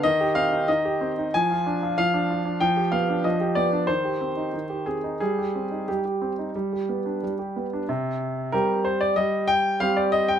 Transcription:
\new Staff \with { instrumentName = "Grand piano" } { \time 4/4 \key c \minor \tempo 4 = 93 << { ees''8 f''8 ees''4 aes''4 f''4 | g''8 f''8 ees''8 d''8 c''4. aes'8 | aes'4 g'2~ g'8 r8 | r4 bes'8 c''16 d''16 ees''8 g''8 f''16 d''16 ees''16 g''16 | } \\ { ees16 g'16 c'16 ees'16 ees16 g'16 c'16 ees'16 f16 f'16 d'16 f'16 f16 d'16 f'16 d'16 | f16 g'16 b16 d'16 f16 g'16 b16 d'16 ees16 g'16 c'16 ees'16 ees16 g'16 c'16 ees'16 | g16 g'16 c'16 ees'16 g16 g'16 c'16 ees'16 g16 g'16 b16 d'16 g16 g'16 b16 d'16 | c4 <g c' g'>4 g4 <g c' g'>4 | } >> }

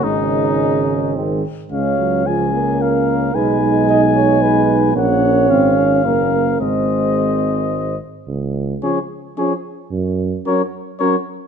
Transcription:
<<
  \new Staff \with { instrumentName = "Trumpet" } { \time 3/4 \key des \major \tempo 4 = 110 ees'2 r4 | f''4 aes''4 f''4 | aes''2. | ges''4 f''2 |
ees''2~ ees''8 r8 | r4 des''4 des''4 | r4 des''4 des''4 | }
  \new Staff \with { instrumentName = "Flugelhorn" } { \time 3/4 \key des \major des'2 c'8 r8 | des''4 aes'4 bes'4 | ces''4 ees''8 des''8 ces''4 | des''2 bes'4 |
c''2~ c''8 r8 | r4 aes'4 aes'4 | r4 bes'4 bes'4 | }
  \new Staff \with { instrumentName = "French horn" } { \time 3/4 \key des \major aes2 aes8 r8 | des'4 des'2 | ees'2. | des'2 des'4 |
c'2~ c'8 r8 | r4 des'4 des'4 | r4 des'4 des'4 | }
  \new Staff \with { instrumentName = "Trombone" } { \clef bass \time 3/4 \key des \major des2 ees8 r8 | aes8 ges8 f8 bes4. | aes8 aes4. aes4 | bes4 c'8 des'8 bes8 bes8 |
aes2~ aes8 r8 | r4 f4 f4 | r4 ges4 ges4 | }
  \new Staff \with { instrumentName = "Tuba" } { \clef bass \time 3/4 \key des \major aes,,2~ aes,,8 r8 | des,2. | ces,2. | bes,,4 aes,,4 ges,,4 |
aes,,2~ aes,,8 r8 | des,4 r2 | ges,4 r2 | }
>>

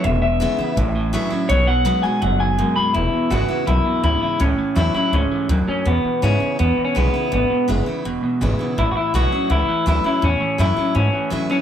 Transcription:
<<
  \new Staff \with { instrumentName = "Clean electric guitar" } { \time 4/4 \key e \major \tempo 4 = 165 e''8 e''2. r8 | cis''8 fis''4 gis''8 fis''8 gis''4 b''8 | e'4 fis'4 e'4 e'8 e'8 | cis'4 e'8 e'8 cis'4 r8 cis'8 |
b4 cis'4 \tuplet 3/2 { b4 cis'8 } b4 | b4 r2. | e'16. fis'32 e'8 fis'4 e'4 e'8 e'8 | cis'4 e'4 cis'4 r8 cis'8 | }
  \new Staff \with { instrumentName = "Steel-string acoustic guitar" } { \time 4/4 \key e \major << { r4 <e gis b e'>8 <b e'>8 r4 <e a cis' e'>8 <cis' e'>8 | r4 <fis b dis' fis'>8 <dis' fis'>8 r2 | r4 <e gis b e'>8 <b e'>8 r2 | r4 <e a cis' e'>8 <cis' e'>8 r2 |
r4 <e gis b e'>8 <b e'>8 r4 <e gis b e'>8 <b e'>8 | r4 <e gis b e'>8 <b e'>8 r4 <e gis b e'>8 <b e'>8 | r4 <e a cis' e'>8 <cis' e'>8 r4 <e a cis' e'>8 <cis' e'>8 | r4 <e a cis' e'>8 <cis' e'>8 r4 <e a cis' e'>8 <cis' e'>8 | } \\ { e,2 a,2 | b,2 gis,4 fis,4 | e,2 fis,4 gis,4 | a,2 gis,4 fis,4 |
e,2 b,2 | e,2 b,2 | a,2 e,2 | a,2 e,2 | } >> }
  \new Staff \with { instrumentName = "Clean electric guitar" } { \clef bass \time 4/4 \key e \major <e, b,>8 <e, b,>8 <e, cis>8 <e, cis>8 <a, e>8 <a, e>8 <a, fis>8 <a, fis>8 | <b, fis>8 <b, fis>8 <b, gis>8 <b, gis>8 <b, fis>8 <b, fis>8 <b, gis>8 <b, gis>8 | <e, b,>8 <e, b,>8 <e, cis>8 <e, cis>8 <e, b,>8 <e, b,>8 <e, cis>8 <e, cis>8 | <a, e>8 <a, e>8 <a, fis>8 <a, fis>8 <a, e>8 <a, e>8 <a, fis>8 <a, fis>8 |
<e, b,>8 <e, b,>8 <e, cis>8 <e, cis>8 <e, b,>8 <e, b,>8 <e, cis>8 <e, cis>8 | <e, b,>8 <e, b,>8 <e, cis>8 <e, cis>8 <e, b,>8 <e, b,>8 <e, cis>8 <e, cis>8 | <a, e>8 <a, e>8 <a, fis>8 <a, fis>8 <a, e>8 <a, e>8 <a, fis>8 <a, fis>8 | <a, e>8 <a, e>8 <a, fis>8 <a, fis>8 <a, e>8 <a, e>8 <a, fis>8 <a, fis>8 | }
  \new Staff \with { instrumentName = "Upright bass" } { \clef bass \time 4/4 \key e \major e,,4. r8 a,,4. r8 | b,,4. r8 fis,,4. r8 | e,,8 r8 gis,,8 r8 b,,8 r8 d,8 r8 | cis,8 r8 e,8 r8 cis,8 r8 d,8 r8 |
e,8 r8 gis,8 r8 e,8 r8 b,,8 r8 | gis,,8 r8 fis,,8 r8 e,,8 r8 gis,,8 r8 | a,,8 r8 b,,8 r8 cis,8 r8 d,8 r8 | e,8 r8 fis,8 r8 gis,8 r8 a,8 r8 | }
>>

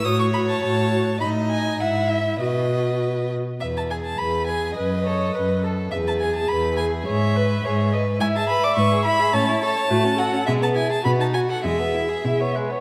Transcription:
<<
  \new Staff \with { instrumentName = "Violin" } { \time 2/4 \key e \major \tempo 4 = 104 dis'''16 cis'''16 b''16 a''16 a''4 | b''8 gis''8 fis''8 e''8 | dis''4. r8 | e''16 a''16 gis''16 a''16 b''8 gis''8 |
dis''4. r8 | e''16 a''16 gis''16 a''16 b''8 gis''8 | e''4. r8 | gis''16 a''16 b''16 d'''16 cis'''8 b''8 |
a''8 a''4 fis''8 | e''16 a''16 gis''16 a''16 b''16 a''16 gis''16 fis''16 | e''4. r8 | }
  \new Staff \with { instrumentName = "Viola" } { \time 2/4 \key e \major fis'8 fis'8 fis'8 fis'8 | dis'4 e'4 | fis'4. r8 | r4 gis'4 |
b'8 cis''8 b'8 a'8 | gis'4 gis'4 | cis''8 b'8 cis''8 dis''8 | e''2 |
cis''4 fis'8 a'8 | gis'4 fis'4 | gis'4 gis'16 cis''16 b'16 cis''16 | }
  \new Staff \with { instrumentName = "Violin" } { \time 2/4 \key e \major cis''2 | dis''4 e''4 | b'4. r8 | b'8 gis'8 b'8 gis'8 |
b'8 a'8 b'8 a'8 | b'8 gis'8 b'8 gis'8 | gis'8 b'8 gis'8 b'8 | e'16 gis'16 b'16 d''16 b'16 gis'16 e'16 gis'16 |
cis'16 e'16 a'16 cis''16 a16 cis'16 fis'16 cis'16 | gis16 b16 e'16 gis'16 b16 dis'16 fis'16 a'16 | gis16 b16 e'16 gis'16 e'16 b16 gis16 b16 | }
  \new Staff \with { instrumentName = "Cello" } { \clef bass \time 2/4 \key e \major a,4 a,4 | a,4 gis,4 | b,4. r8 | e,4 e,4 |
fis,4 fis,4 | e,4 e,4 | gis,4 gis,4 | gis,4 gis,4 |
a,4 a,4 | b,4 b,4 | e,4 b,4 | }
>>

